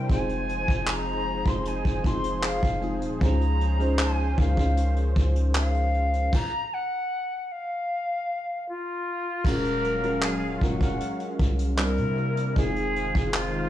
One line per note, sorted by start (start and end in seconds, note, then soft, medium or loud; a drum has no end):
0.00 0.12 G3 medium
0.00 0.10 C4 medium
0.00 0.11 D4 medium
0.00 0.12 E4 medium
0.00 0.12 A#4 medium
0.00 3.17 C5 medium
0.00 0.11 G5 loud
0.09 0.66 F1 loud
0.09 6.29 F3 medium
0.09 1.00 G#3 medium
0.09 1.00 C4 medium
0.09 3.18 D#4 medium
0.09 1.00 D#4 medium
0.09 1.00 F4 medium
0.09 6.29 G#4 medium
0.09 1.01 C5 loud
0.09 0.91 G#5 loud
0.09 kick loud
0.09 closed hi-hat medium
0.29 closed hi-hat medium
0.49 closed hi-hat medium
0.68 1.43 F1 loud
0.68 kick loud
0.68 closed hi-hat medium
0.87 1.49 A#5 loud
0.87 clap loud
0.87 closed hi-hat medium
1.45 1.83 F1 loud
1.45 1.84 G#3 medium
1.45 1.85 C4 medium
1.45 1.85 D#4 medium
1.45 1.85 F4 medium
1.45 1.85 C5 medium
1.45 1.69 C6 medium
1.45 kick medium
1.45 closed hi-hat medium
1.65 2.08 G#5 loud
1.65 closed hi-hat medium
1.84 2.60 F1 loud
1.84 kick medium
1.84 closed hi-hat medium
2.04 2.56 G#3 medium
2.04 2.56 C4 medium
2.04 2.56 D#4 medium
2.04 2.56 F4 medium
2.04 2.57 C5 medium
2.04 2.46 C6 loud
2.04 kick loud
2.04 closed hi-hat medium
2.24 closed hi-hat medium
2.43 2.95 F5 medium
2.43 clap loud
2.43 closed hi-hat medium
2.62 3.03 F1 loud
2.62 kick medium
2.62 closed hi-hat soft
2.81 3.08 G#3 medium
2.81 3.08 C4 medium
2.81 3.08 D#4 medium
2.81 3.09 F4 medium
2.81 3.09 G#4 medium
2.81 closed hi-hat soft
3.02 3.20 D#1 loud
3.02 closed hi-hat medium
3.20 4.34 C#2 loud
3.20 3.60 G#3 medium
3.20 3.60 C#4 medium
3.20 6.30 C#4 medium
3.20 3.60 D#4 medium
3.20 3.60 F4 medium
3.20 6.30 C5 medium
3.20 3.61 C5 loud
3.20 4.03 A#5 loud
3.20 kick loud
3.20 closed hi-hat medium
3.41 closed hi-hat medium
3.61 closed hi-hat medium
3.79 4.18 G#3 medium
3.79 4.18 C#4 medium
3.79 4.19 D#4 medium
3.79 4.19 F4 medium
3.79 4.19 C5 medium
3.79 closed hi-hat medium
3.99 4.41 G#5 medium
3.99 clap loud
3.99 closed hi-hat medium
4.38 4.57 C#2 loud
4.38 4.51 G#3 medium
4.38 4.51 C#4 medium
4.38 4.51 D#4 medium
4.38 4.52 F4 medium
4.38 4.52 A#4 medium
4.38 5.17 F5 medium
4.38 kick loud
4.57 5.14 C#2 loud
4.57 5.60 G#3 medium
4.57 5.61 C#4 medium
4.57 5.61 D#4 medium
4.57 5.61 F4 medium
4.57 5.62 C5 medium
4.57 kick medium
4.57 closed hi-hat medium
4.77 closed hi-hat medium
4.96 closed hi-hat medium
5.16 6.29 C#2 loud
5.16 kick loud
5.16 closed hi-hat medium
5.36 closed hi-hat medium
5.55 6.36 F5 medium
5.55 clap loud
5.55 closed hi-hat medium
5.74 closed hi-hat soft
5.94 closed hi-hat soft
6.13 closed hi-hat medium
6.33 6.75 A#5 loud
6.33 kick loud
6.33 crash medium
6.73 7.53 F#5 loud
7.51 8.67 F5 medium
8.68 9.47 F4 loud
9.44 10.58 D#1 loud
9.44 11.76 F#3 medium
9.44 9.83 G#3 loud
9.44 11.76 G#3 medium
9.44 11.76 C#4 medium
9.44 9.83 C#4 medium
9.44 9.84 F4 medium
9.44 9.84 F#4 medium
9.44 10.26 A#4 loud
9.44 9.84 A#4 loud
9.44 11.76 F5 medium
9.44 kick loud
9.44 crash loud
9.64 closed hi-hat medium
9.84 closed hi-hat medium
10.03 10.42 G#3 medium
10.03 10.42 C#4 medium
10.03 10.42 F4 medium
10.03 10.42 F#4 medium
10.03 10.43 A#4 medium
10.03 closed hi-hat medium
10.22 10.55 G#4 loud
10.22 clap loud
10.22 closed hi-hat medium
10.56 10.65 F4 medium
10.61 10.99 D#1 loud
10.61 10.74 G#3 medium
10.61 10.74 C#4 medium
10.61 10.75 F4 medium
10.61 10.75 F#4 medium
10.61 11.40 F#4 medium
10.61 10.75 A#4 medium
10.61 kick loud
10.80 11.78 G#3 medium
10.80 11.78 C#4 medium
10.80 11.79 F#4 medium
10.80 11.79 A#4 medium
10.80 11.79 F5 medium
10.80 kick loud
10.80 closed hi-hat medium
11.00 closed hi-hat medium
11.20 closed hi-hat medium
11.39 12.00 C2 loud
11.39 kick loud
11.39 closed hi-hat medium
11.59 closed hi-hat medium
11.78 12.55 C3 medium
11.78 12.41 G3 medium
11.78 12.55 G3 medium
11.78 12.55 A#3 medium
11.78 12.41 C4 medium
11.78 12.41 D4 medium
11.78 12.55 E4 medium
11.78 12.41 E4 medium
11.78 12.42 A#4 medium
11.78 12.60 A#4 loud
11.78 clap loud
11.78 closed hi-hat medium
11.98 12.54 C3 loud
11.98 closed hi-hat soft
12.18 closed hi-hat soft
12.37 closed hi-hat medium
12.56 13.12 F1 loud
12.56 13.69 D#3 medium
12.56 13.46 G#3 loud
12.56 13.69 G#3 medium
12.56 13.47 C4 medium
12.56 13.47 D#4 medium
12.56 13.47 F4 medium
12.56 13.47 G#4 loud
12.56 13.37 G#4 loud
12.56 13.69 C5 medium
12.56 13.69 F5 medium
12.56 kick loud
12.56 closed hi-hat medium
12.76 closed hi-hat medium
12.96 closed hi-hat medium
13.15 13.69 F1 loud
13.15 kick loud
13.15 closed hi-hat medium
13.34 13.69 F4 loud
13.34 clap loud
13.34 closed hi-hat medium